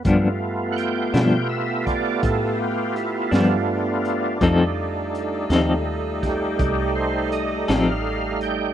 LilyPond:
<<
  \new Staff \with { instrumentName = "Tonewheel organ" } { \time 12/8 \key g \dorian \tempo 4. = 55 r4 <fis'' g''>4 e''8 d''8 a'8 g'8 e'8 d'4.~ | d'4. r4 g'4 c''8 ees''8 f''4 g''8 | }
  \new Staff \with { instrumentName = "Tonewheel organ" } { \time 12/8 \key g \dorian <a b f'>1. | <g a ees'>1. | }
  \new Staff \with { instrumentName = "Saxophone section" } { \time 12/8 \key g \dorian << { <b g'>1. | <ees' a'>1. | } \\ { f'1.~ | f'2. g'2. | } >> }
  \new Staff \with { instrumentName = "Clean electric guitar" } { \time 12/8 \key g \dorian <g, f b d'>8 r4 <g, f b d'>8 r2 r8 <g, f b d'>8 r4 | <f c' ees' a'>8 r4 <f c' ees' a'>8 r2 r8 <f c' ees' a'>8 r4 | }
  \new Staff \with { instrumentName = "Fingered electric bass" } { \clef bass \time 12/8 \key g \dorian g,4. b,4. a,4. g,4. | f,4. ees,4. c,4. a,,4. | }
  \new DrumStaff \with { instrumentName = "Drums" } \drummode { \time 12/8 <hh bd>4 hh8 <hh sn>4 <hh bd>8 <hh bd>4 hh8 <hh sn>4 hh8 | <hh bd>4 hh8 <hh sn>4 <hh bd sn>8 <hh bd>4 hh8 <hh sn>4 hh8 | }
>>